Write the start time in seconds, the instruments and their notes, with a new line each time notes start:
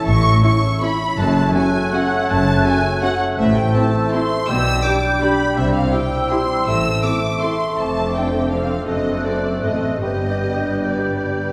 Already playing: harp E3 A3 E4 A4 C#5 E5, bassoon A3, clarinet C#5, flute section E6
0.00 harp C#4
0.06 double bass section A1, cello section A2, harp A2, violin section C#6
0.15 harp E3
0.25 harp A3
0.33 harp C#4
0.43 viola section C#4 E4, french horn section C#4 E4, harp E4, violin section C#6
0.53 harp A4
0.63 harp C#5
0.72 harp E5
0.81 french horn section C#4 E4, viola section C#4 E4, harp C#5, violin section B5
0.91 harp A4
1.01 harp E4
1.10 harp C#4
1.18 double bass section F#1, cello section F#2, harp F#2, bassoon A3, clarinet C#5, violin section A5, flute section F#6
1.27 harp C#3
1.37 harp A3
1.46 harp C#4
1.55 viola section C#4 F#4, french horn section C#4 F#4, harp F#4, violin section G#5
1.65 harp A4
1.75 harp C#5
1.84 harp F#5
1.93 viola section C#4 F#4, french horn section C#4 F#4, harp C#5, violin section F#5
2.02 harp A4
2.12 harp F#4
2.21 harp C#4
2.29 double bass section F#1, harp F#2, cello section F#2, violin section A5
2.38 harp C#3
2.47 harp A3
2.56 harp C#4
2.64 french horn section C#4 F#4, viola section C#4 F#4, harp F#4, violin section G#5
2.75 harp A4
2.84 harp C#5
2.93 harp F#5
3.02 viola section C#4 F#4, french horn section C#4 F#4, harp C#5, violin section F#5
3.12 harp A4
3.21 harp F#4
3.29 harp C#4
3.38 double bass section A1, harp A2, cello section A2, bassoon A3, clarinet C5, violin section E5, flute section E6
3.47 harp E3
3.56 harp A3, violin section G5
3.65 harp C4
3.74 french horn section C4 E4, viola section C4 E4, harp E4, violin section A5
3.85 harp A4
3.94 harp C5
4.04 harp E5
4.12 french horn section C4 E4, viola section C4 E4, harp C5, violin section C6
4.22 harp A4
4.31 harp E4
4.40 harp C4
4.48 double bass section B1, harp B2, cello section B2, bassoon G3, clarinet D5, violin section E6, flute section G6
4.57 harp B3
4.66 harp G3
4.75 harp D4
4.84 french horn section D4 G4, viola section D4 G4, harp G4, violin section D6
4.94 harp D4
5.04 harp D5
5.13 harp G5
5.21 french horn section D4 G4, viola section D4 G4, harp D5, violin section B5
5.32 harp G4
5.40 harp D4
5.49 harp G3
5.57 double bass section C2, cello section C3, harp C3, clarinet C5, violin section E5, flute section E6
5.66 harp C4
5.74 harp G3, violin section F5
5.83 harp E4
5.93 french horn section C4 E4, viola section E4 G4, harp G4, violin section G5
6.03 harp E4
6.12 harp E5
6.30 french horn section C4 E4, viola section E4 G4, harp E5, violin section C6
6.41 harp G4
6.50 harp E4
6.59 harp G3
6.67 double bass section A1, cello section A2, harp A2, bassoon A3, violin section E6
6.76 harp E3
6.85 harp A3
6.95 harp E4
7.04 viola section C4 A4, french horn section C4 E4, harp C5, violin section D6
7.14 harp A4
7.23 harp E5
7.33 harp C6
7.41 viola section C4 A4, french horn section C4 E4, harp E5, violin section C6
7.52 harp A4
7.60 harp C5
7.69 harp E4
7.77 double bass section F1, cello section F2, harp F2, viola section C4 A4, clarinet C5, violin section A5, flute section D6
7.87 harp C3
7.95 harp A3
8.05 harp D4
8.13 french horn section C4 D4, harp C5, violin section G5
8.24 harp A4
8.33 harp D5
8.42 harp C6
8.51 viola section C4 A4, french horn section C4 D4, harp D5, violin section F5
8.60 harp A4
8.69 harp C5
8.78 harp D4
8.86 double bass section F#1, harp F#2, cello section F#2, bassoon A3, viola section C4 A4, violin section D#5, flute section F#6
8.96 harp F#3
9.05 harp A3
9.15 harp C4
9.24 french horn section C4 A4, harp C5, violin section D5
9.35 harp A4
9.45 harp C5
9.55 harp C6
9.63 double bass section A1, cello section A2, french horn section C4 A4, viola section C4 A4, harp C5, violin section D#5
9.74 harp A4
9.84 harp C5
9.94 harp C4
10.02 double bass section G1, cello section G2, harp G2, bassoon G3, viola section B3 G4, clarinet B4, violin section D#5, flute section G6
10.14 harp D3
10.23 harp G3
10.34 harp D4
10.43 french horn section B3 G4, harp B4
10.65 harp D5
10.75 harp B5
10.85 viola section B3 G4, french horn section B3 G4, violin section D5, harp D5
10.96 harp G4
11.06 harp B4
11.25 harp G2
11.34 harp D3
11.43 harp G3